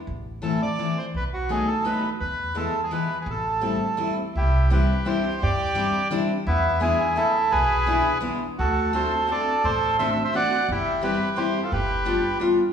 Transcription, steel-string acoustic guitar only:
\new Staff \with { instrumentName = "Steel-string acoustic guitar" } { \time 3/4 \key a \minor \tempo 4 = 170 r4 <e a c' e'>8 r8 <e a c' e'>8 r8 | r4 <fis a b dis'>8 r8 <fis a b dis'>8 r8 | r4 <e gis b e'>8 r8 <e gis b e'>8 r8 | r4 <g a c' e'>8 r8 <g a c' e'>8 r8 |
\key c \major r4 <g c' d' e'>8 r8 <g c' d' e'>8 r8 | r4 <g c' d' e'>8 r8 <g c' d' e'>8 r8 | r4 <gis b d' e'>8 r8 <gis b d' e'>8 r8 | r4 <gis b d' e'>8 r8 <gis b d' e'>8 r8 |
r4 <a c' d' fis'>8 r8 <a c' d' fis'>8 r8 | r4 <a c' d' fis'>8 r8 <a c' d' fis'>8 r8 | r4 <g c' e' g'>8 r8 <g c' e' g'>8 r8 | r4 <g b d' f'>8 r8 <g b d' f'>8 r8 | }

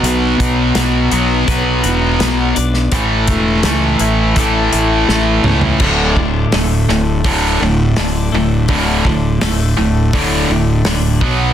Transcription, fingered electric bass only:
\new Staff \with { instrumentName = "Fingered electric bass" } { \clef bass \time 4/4 \key d \major \tempo 4 = 83 b,,8 b,,8 b,,8 b,,8 b,,8 e,,8 b,,8 b,,8 | a,,8 e,,8 cis,8 a,,8 a,,8 a,,8 a,,8 cis,8 | d,,4 d,,8 d,,8 d,,8 d,,8 d,,8 d,,8 | d,,8 d,,8 d,,8 d,,8 d,,8 d,,8 d,,8 b,,8 | }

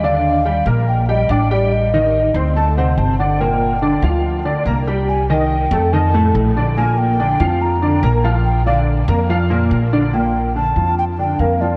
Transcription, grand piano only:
\new Staff \with { instrumentName = "Grand piano" } { \time 4/4 \key bes \major \tempo 4 = 142 <d d' d''>4 <g g' g''>8 <bes bes' bes''>4 <g g' g''>8 <d' d'' d'''>8 <g g' g''>8~ | <g g' g''>8 <ees ees' ees''>4 <c' c'' c'''>8 <a a' a''>8 <c c' c''>4 <d d' d''>8 | <bes, bes bes'>4 <d d' d''>8 <f f' f''>4 <d d' d''>8 <bes bes' bes''>8 <g g' g''>8~ | <g g' g''>8 <ees ees' ees''>4 <a a' a''>8 <ees ees' ees''>8 <a, a a'>4 <d d' d''>8 |
<bes, bes bes'>4 <d d' d''>8 <f f' f''>4 <d d' d''>8 <bes bes' bes''>8 <f f' f''>8~ | <f f' f''>8 <d d' d''>4 <bes bes' bes''>8 <f f' f''>8 <bes, bes bes'>4 <d d' d''>8 | <bes, bes>4 <d d'>8 <f f'>4 <d d'>8 <bes bes'>8 <f f'>8 | }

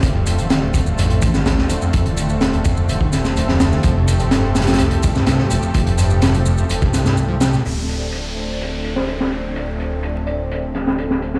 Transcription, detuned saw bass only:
\new Staff \with { instrumentName = "Detuned saw bass" } { \clef bass \time 4/4 \key d \minor \tempo 4 = 126 d,,2 a,,4 a,,8 d,,8 | d,,2 d,,2 | f,,2 c,4 c,8 f,,8 | f,,2 f,,8 c,4. |
d,,1~ | d,,1 | }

